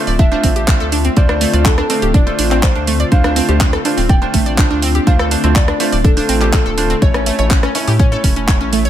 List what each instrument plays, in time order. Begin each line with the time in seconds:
Already playing: analog synth pad D3 A3 C4 F4 E5
0.07 analog synth bass D1, synth arpeggio sound D5, open hi-hat
0.19 synth arpeggio sound D4, grand piano E5, kick, closed hi-hat
0.32 grand piano A3 D4 F4 C5, synth arpeggio sound D4, closed hi-hat
0.43 analog synth bass A1, synth arpeggio sound C4, kick, open hi-hat
0.56 synth arpeggio sound G4, closed hi-hat
0.68 grand piano A3 D4 F4 C5, synth arpeggio sound D4, kick, clap, closed hi-hat
0.80 analog synth bass D2, synth arpeggio sound A4, closed hi-hat
0.92 synth arpeggio sound D4, open hi-hat
1.05 synth arpeggio sound C4, closed hi-hat
1.17 analog synth bass D2, grand piano A3 D4 F4 C5 D5, synth arpeggio sound D5, kick, closed hi-hat
1.29 synth arpeggio sound D4, cross-stick, closed hi-hat
1.41 synth arpeggio sound A3, open hi-hat
1.53 analog synth bass D2, grand piano A3 D4 F4 C5, synth arpeggio sound D5, closed hi-hat
1.65 synth arpeggio sound D4, grand piano A4, kick, clap, closed hi-hat
1.78 synth arpeggio sound D4, cross-stick, closed hi-hat
1.90 grand piano A3 D4 F4 C5, synth arpeggio sound C4, open hi-hat
2.02 analog synth bass D1, synth arpeggio sound G4, closed hi-hat
2.14 synth arpeggio sound D4, grand piano D5, kick, closed hi-hat
2.27 grand piano A3 D4 F4 C5, synth arpeggio sound A4, closed hi-hat
2.39 analog synth bass A1, synth arpeggio sound D4, open hi-hat
2.51 synth arpeggio sound C4, clap, closed hi-hat
2.63 grand piano A3 D4 F4 C5, synth arpeggio sound D5, kick, clap, closed hi-hat
2.75 analog synth bass D2, synth arpeggio sound D4, closed hi-hat
2.87 synth arpeggio sound A3, open hi-hat
3.00 synth arpeggio sound D5, closed hi-hat
3.12 analog synth bass D2, grand piano A3 D4 F4 C5 F5, analog synth pad D4, synth arpeggio sound D4, kick, closed hi-hat
3.24 synth arpeggio sound D4, cross-stick, closed hi-hat
3.36 synth arpeggio sound C4, open hi-hat
3.49 analog synth bass D2, grand piano A3 D4 F4 C5, synth arpeggio sound G4, closed hi-hat
3.61 synth arpeggio sound D4, kick, clap, closed hi-hat
3.73 synth arpeggio sound A4, cross-stick, closed hi-hat
3.85 grand piano A3 D4 F4 C5, synth arpeggio sound D4, open hi-hat
3.97 analog synth bass D1, synth arpeggio sound C4, open hi-hat
4.09 synth arpeggio sound D5, grand piano G5, kick, closed hi-hat
4.22 grand piano A3 D4 F4 C5, synth arpeggio sound D4, closed hi-hat
4.34 analog synth bass A1, synth arpeggio sound A3, kick, open hi-hat
4.46 synth arpeggio sound D5, closed hi-hat
4.58 grand piano A3 D4 F4 C5, synth arpeggio sound D4, kick, clap, closed hi-hat
4.71 analog synth bass D2, synth arpeggio sound D4, closed hi-hat
4.82 synth arpeggio sound C4, open hi-hat
4.95 synth arpeggio sound G4, closed hi-hat
5.07 analog synth bass D2, grand piano A3 D4 F4 C5 F5, synth arpeggio sound D4, kick, closed hi-hat
5.19 synth arpeggio sound A4, cross-stick, closed hi-hat
5.31 synth arpeggio sound D4, open hi-hat
5.44 analog synth bass D2, grand piano A3 D4 F4 C5, synth arpeggio sound C4, closed hi-hat
5.56 grand piano D5, synth arpeggio sound D5, kick, clap, closed hi-hat
5.68 synth arpeggio sound D4, cross-stick, closed hi-hat
5.80 grand piano A3 D4 F4 C5, synth arpeggio sound A3, open hi-hat
5.92 analog synth bass D1, synth arpeggio sound D5, open hi-hat
6.04 synth arpeggio sound D4, grand piano A4, kick, closed hi-hat
6.17 grand piano A3 D4 F4 C5, synth arpeggio sound D4, open hi-hat
6.29 analog synth bass A1, synth arpeggio sound C4, open hi-hat
6.41 grand piano A3 D4 F4 C5, synth arpeggio sound G4, clap, closed hi-hat
6.53 grand piano A3 D4 F4 A4 C5, synth arpeggio sound D4, kick, clap, closed hi-hat
6.66 analog synth bass D1, synth arpeggio sound A4, closed hi-hat
6.78 grand piano A3 D4 F4 C5, synth arpeggio sound D4, open hi-hat
6.90 synth arpeggio sound C4, closed hi-hat
7.02 analog synth bass A1, grand piano A3 C#4 E4 C#5, analog synth pad C#4 E4, synth arpeggio sound C#5, kick, closed hi-hat
7.14 synth arpeggio sound C#4, cross-stick, closed hi-hat
7.26 synth arpeggio sound A3, open hi-hat
7.39 analog synth bass A1, grand piano A3 C#4 E4 C#5, synth arpeggio sound C#5, closed hi-hat
7.51 synth arpeggio sound C#4, kick, clap, closed hi-hat
7.63 synth arpeggio sound C#4, cross-stick, closed hi-hat
7.75 grand piano A3 C#4 E4 C#5, synth arpeggio sound C#4, open hi-hat
7.88 analog synth bass A2, synth arpeggio sound G4, open hi-hat
7.99 synth arpeggio sound C#4, grand piano C#5, kick, closed hi-hat
8.12 grand piano A3 C#4 E4 C#5, synth arpeggio sound A4, closed hi-hat
8.24 analog synth bass E1, synth arpeggio sound C#4, kick, open hi-hat
8.36 synth arpeggio sound C#4, closed hi-hat
8.48 grand piano A3 C#4 E4 C#5, synth arpeggio sound C#5, kick, clap, closed hi-hat
8.61 analog synth bass A1, synth arpeggio sound C#4, closed hi-hat
8.73 synth arpeggio sound A3, open hi-hat
8.85 synth arpeggio sound C#5, closed hi-hat